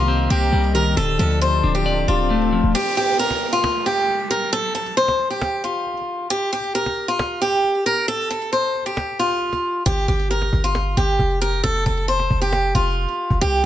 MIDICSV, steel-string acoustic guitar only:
0, 0, Header, 1, 2, 480
1, 0, Start_track
1, 0, Tempo, 444444
1, 1048, Time_signature, 4, 2, 24, 8
1, 14748, End_track
2, 0, Start_track
2, 0, Title_t, "Steel-string acoustic guitar"
2, 0, Program_c, 0, 25
2, 0, Note_on_c, 0, 65, 78
2, 306, Note_off_c, 0, 65, 0
2, 327, Note_on_c, 0, 67, 73
2, 779, Note_off_c, 0, 67, 0
2, 808, Note_on_c, 0, 70, 73
2, 1028, Note_off_c, 0, 70, 0
2, 1047, Note_on_c, 0, 69, 101
2, 1268, Note_off_c, 0, 69, 0
2, 1287, Note_on_c, 0, 69, 75
2, 1508, Note_off_c, 0, 69, 0
2, 1528, Note_on_c, 0, 72, 81
2, 1866, Note_off_c, 0, 72, 0
2, 1886, Note_on_c, 0, 67, 74
2, 2226, Note_off_c, 0, 67, 0
2, 2247, Note_on_c, 0, 65, 68
2, 2924, Note_off_c, 0, 65, 0
2, 2968, Note_on_c, 0, 67, 109
2, 3188, Note_off_c, 0, 67, 0
2, 3209, Note_on_c, 0, 67, 72
2, 3429, Note_off_c, 0, 67, 0
2, 3449, Note_on_c, 0, 70, 75
2, 3787, Note_off_c, 0, 70, 0
2, 3808, Note_on_c, 0, 65, 72
2, 4146, Note_off_c, 0, 65, 0
2, 4169, Note_on_c, 0, 67, 74
2, 4619, Note_off_c, 0, 67, 0
2, 4650, Note_on_c, 0, 70, 75
2, 4869, Note_off_c, 0, 70, 0
2, 4888, Note_on_c, 0, 69, 108
2, 5108, Note_off_c, 0, 69, 0
2, 5126, Note_on_c, 0, 69, 73
2, 5347, Note_off_c, 0, 69, 0
2, 5368, Note_on_c, 0, 72, 88
2, 5706, Note_off_c, 0, 72, 0
2, 5728, Note_on_c, 0, 67, 71
2, 6067, Note_off_c, 0, 67, 0
2, 6089, Note_on_c, 0, 65, 72
2, 6765, Note_off_c, 0, 65, 0
2, 6806, Note_on_c, 0, 67, 103
2, 7027, Note_off_c, 0, 67, 0
2, 7047, Note_on_c, 0, 67, 81
2, 7268, Note_off_c, 0, 67, 0
2, 7288, Note_on_c, 0, 70, 82
2, 7627, Note_off_c, 0, 70, 0
2, 7648, Note_on_c, 0, 65, 76
2, 7986, Note_off_c, 0, 65, 0
2, 8008, Note_on_c, 0, 67, 75
2, 8459, Note_off_c, 0, 67, 0
2, 8489, Note_on_c, 0, 70, 78
2, 8709, Note_off_c, 0, 70, 0
2, 8727, Note_on_c, 0, 69, 108
2, 8948, Note_off_c, 0, 69, 0
2, 8969, Note_on_c, 0, 69, 74
2, 9189, Note_off_c, 0, 69, 0
2, 9207, Note_on_c, 0, 72, 82
2, 9546, Note_off_c, 0, 72, 0
2, 9568, Note_on_c, 0, 67, 73
2, 9907, Note_off_c, 0, 67, 0
2, 9929, Note_on_c, 0, 65, 70
2, 10605, Note_off_c, 0, 65, 0
2, 10647, Note_on_c, 0, 67, 105
2, 10868, Note_off_c, 0, 67, 0
2, 10889, Note_on_c, 0, 67, 73
2, 11109, Note_off_c, 0, 67, 0
2, 11130, Note_on_c, 0, 70, 72
2, 11467, Note_off_c, 0, 70, 0
2, 11490, Note_on_c, 0, 65, 73
2, 11827, Note_off_c, 0, 65, 0
2, 11849, Note_on_c, 0, 67, 76
2, 12300, Note_off_c, 0, 67, 0
2, 12328, Note_on_c, 0, 70, 75
2, 12548, Note_off_c, 0, 70, 0
2, 12566, Note_on_c, 0, 69, 107
2, 12787, Note_off_c, 0, 69, 0
2, 12807, Note_on_c, 0, 69, 76
2, 13028, Note_off_c, 0, 69, 0
2, 13047, Note_on_c, 0, 72, 89
2, 13386, Note_off_c, 0, 72, 0
2, 13408, Note_on_c, 0, 67, 72
2, 13746, Note_off_c, 0, 67, 0
2, 13768, Note_on_c, 0, 65, 71
2, 14445, Note_off_c, 0, 65, 0
2, 14487, Note_on_c, 0, 67, 104
2, 14708, Note_off_c, 0, 67, 0
2, 14748, End_track
0, 0, End_of_file